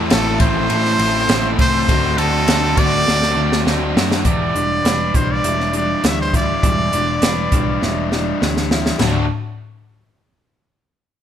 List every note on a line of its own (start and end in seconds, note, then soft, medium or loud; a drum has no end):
0.00 0.11 A3 medium
0.00 0.11 C4 medium
0.00 0.11 E4 medium
0.00 4.22 A4 medium
0.00 1.86 E5 medium
0.00 1.87 B5 medium
0.00 1.86 C6 medium
0.09 0.39 A1 medium
0.09 0.38 A2 loud
0.09 0.38 E3 loud
0.09 0.39 A3 loud
0.09 0.40 C4 loud
0.09 0.39 E4 loud
0.09 0.39 A4 medium
0.09 snare loud
0.09 ride loud
0.39 0.68 A1 medium
0.39 0.68 A2 medium
0.39 0.68 E3 medium
0.39 0.69 A3 medium
0.39 0.69 C4 medium
0.39 0.70 E4 loud
0.39 1.55 C5 loud
0.39 kick medium
0.39 ride medium
0.69 0.98 A1 medium
0.69 0.98 A2 loud
0.69 0.99 E3 loud
0.69 0.99 A3 loud
0.69 0.99 C4 loud
0.69 0.99 E4 loud
0.69 ride loud
0.85 snare soft
0.99 1.27 A1 medium
0.99 1.28 A2 medium
0.99 1.28 E3 medium
0.99 1.29 A3 medium
0.99 1.29 C4 loud
0.99 1.29 E4 medium
0.99 ride medium
1.29 1.57 A1 medium
1.29 1.57 A2 medium
1.29 1.58 E3 medium
1.29 1.58 A3 loud
1.29 1.58 C4 loud
1.29 1.59 E4 loud
1.29 snare loud
1.29 ride loud
1.59 1.87 C2 medium
1.59 1.87 A2 medium
1.59 1.87 E3 loud
1.59 1.87 A3 loud
1.59 1.87 C4 loud
1.59 1.87 E4 loud
1.59 2.19 C5 loud
1.59 kick medium
1.59 ride medium
1.88 2.16 D2 loud
1.88 2.17 D3 loud
1.88 2.17 A3 loud
1.88 2.17 C4 loud
1.88 2.18 D4 loud
1.88 2.18 F#4 loud
1.88 4.24 F#5 medium
1.88 4.24 C6 medium
1.88 4.24 D6 loud
1.88 kick loud
1.88 ride loud
2.18 2.46 D2 medium
2.18 2.46 D3 medium
2.18 2.47 A3 medium
2.18 2.46 C4 loud
2.18 2.47 D4 loud
2.18 2.47 F#4 loud
2.18 2.80 A4 loud
2.18 ride medium
2.47 2.76 D2 loud
2.47 2.76 D3 loud
2.47 2.77 A3 loud
2.47 2.76 C4 loud
2.47 2.77 D4 loud
2.47 2.77 F#4 loud
2.47 snare loud
2.47 ride loud
2.77 3.05 D2 medium
2.77 3.05 D3 medium
2.77 3.05 A3 medium
2.77 3.06 C4 loud
2.77 3.06 D4 loud
2.77 3.06 F#4 medium
2.77 3.67 D5 loud
2.77 kick loud
2.77 ride medium
3.06 3.35 D2 loud
3.06 3.35 D3 loud
3.06 3.36 A3 loud
3.06 3.36 C4 medium
3.06 3.36 D4 loud
3.06 3.36 F#4 loud
3.06 snare medium
3.23 snare medium
3.36 3.64 D2 medium
3.36 3.64 D3 loud
3.36 3.65 A3 loud
3.36 3.65 C4 loud
3.36 3.65 D4 loud
3.36 3.65 F#4 loud
3.52 snare medium
3.65 3.94 D2 loud
3.65 3.94 D3 medium
3.65 3.95 A3 loud
3.65 3.95 C4 loud
3.65 3.96 D4 loud
3.65 3.96 F#4 loud
3.65 snare medium
3.96 4.24 F#2 medium
3.96 4.24 D3 medium
3.96 4.24 A3 medium
3.96 4.24 C4 medium
3.96 4.24 D4 loud
3.96 4.24 F#4 medium
3.96 snare loud
4.12 snare medium
4.25 4.50 E1 medium
4.25 4.53 E3 medium
4.25 4.53 G3 medium
4.25 4.53 B3 medium
4.25 5.17 D5 loud
4.25 kick medium
4.25 closed hi-hat medium
4.55 4.80 E1 medium
4.55 4.82 E3 medium
4.55 4.82 G3 medium
4.55 5.14 D4 medium
4.55 closed hi-hat medium
4.84 5.10 E1 medium
4.84 5.12 E3 medium
4.84 5.12 G3 medium
4.84 6.33 B4 medium
4.84 snare loud
4.84 closed hi-hat medium
5.14 5.39 B1 medium
5.14 5.41 E3 medium
5.14 5.41 G3 medium
5.14 5.73 D4 medium
5.14 5.33 C5 medium
5.14 kick medium
5.14 closed hi-hat medium
5.32 5.75 D5 loud
5.44 5.94 E1 medium
5.44 5.71 E3 medium
5.44 5.71 G3 medium
5.44 6.32 E4 medium
5.44 closed hi-hat medium
5.60 snare soft
5.73 6.01 E3 medium
5.73 6.01 G3 medium
5.73 6.92 D4 medium
5.73 6.09 D5 medium
5.73 closed hi-hat medium
6.04 6.53 D2 medium
6.04 6.31 E3 medium
6.04 6.31 G3 medium
6.04 6.20 E5 medium
6.04 snare loud
6.04 closed hi-hat medium
6.21 6.34 C5 medium
6.34 6.60 E3 medium
6.34 6.61 G3 medium
6.34 7.80 E4 medium
6.34 8.39 D5 loud
6.34 kick medium
6.34 closed hi-hat medium
6.63 6.88 E1 loud
6.63 6.90 E3 medium
6.63 6.90 G3 medium
6.63 kick loud
6.63 closed hi-hat medium
6.92 7.17 E1 medium
6.92 7.20 E3 medium
6.92 7.20 G3 medium
6.92 7.51 D4 medium
6.92 closed hi-hat medium
7.22 7.47 E1 medium
7.22 7.50 E3 medium
7.22 7.50 G3 medium
7.22 8.71 B4 medium
7.22 snare loud
7.22 closed hi-hat medium
7.52 7.77 B1 medium
7.52 7.80 E3 medium
7.52 7.80 G3 medium
7.52 8.10 D4 medium
7.52 kick medium
7.52 closed hi-hat medium
7.81 8.32 E1 medium
7.81 8.09 E3 medium
7.81 8.09 G3 medium
7.81 8.70 E4 medium
7.81 snare medium
8.11 8.39 E3 medium
8.11 8.39 G3 medium
8.11 9.00 D4 medium
8.11 snare medium
8.42 8.91 D2 medium
8.42 8.69 E3 medium
8.42 8.69 G3 medium
8.42 snare medium
8.57 snare medium
8.71 8.98 E3 medium
8.71 8.98 G3 medium
8.71 9.00 E4 medium
8.71 snare loud
8.86 snare medium
8.99 9.29 D2 medium
8.99 9.24 D3 loud
8.99 9.25 F#3 loud
8.99 9.25 A3 loud
8.99 9.25 D4 loud
8.99 9.25 F#4 loud
8.99 snare medium
8.99 floor tom loud
8.99 crash medium